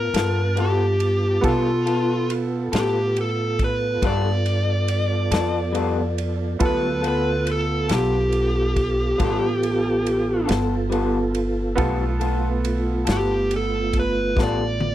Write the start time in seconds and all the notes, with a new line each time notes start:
Already playing: A2 B3 F4 A#4 A5
0.14 G2 B3 F4 A4, snare, ride
0.56 G3 B3 F4 A4, ride
0.60 G4
1.00 ride
1.41 B2 G3 B3 F4 A4, kick, ride
1.48 F4
1.86 B3 F4 A4, ride
2.30 ride
2.72 A2 B3 F4 G4 A4, snare, ride
3.17 ride
3.21 A4
3.59 kick, ride
3.64 B4
4.02 G2 G3 B3 F4 A4, kick, ride
4.07 D5
4.46 ride
4.88 ride
5.31 F2 B3 F4 A4, snare, ride
5.73 G3 B3 F4 A4, ride
6.18 ride
6.59 D2 F#3 G3 B3 F4 A4, kick, ride
6.65 B4
7.02 B3 F4 A4, ride
7.06 F4 A4 B4
7.47 ride
7.51 A4
7.89 B1 B3 F4 A4, snare, ride
7.95 G4
8.32 ride
8.76 kick, ride
9.18 A1 G3 B3 F4 A4, kick, ride
9.63 ride
10.06 ride
10.46 G1 B3 F4 A4, ride
10.51 snare
10.90 G3 B3 F4 A4, ride
11.35 ride
11.76 B1 G3 B3 F4 A4, kick, ride
11.81 A3 B3 F4
12.20 B3 F4 A4, ride
12.65 ride
13.05 G1 B3 F4 A4, snare, ride
13.12 G4
13.51 ride
13.56 A4
13.93 kick, ride
13.99 B4
14.36 A1 G3 B3 F4 A4, kick, snare
14.43 D5
14.80 high tom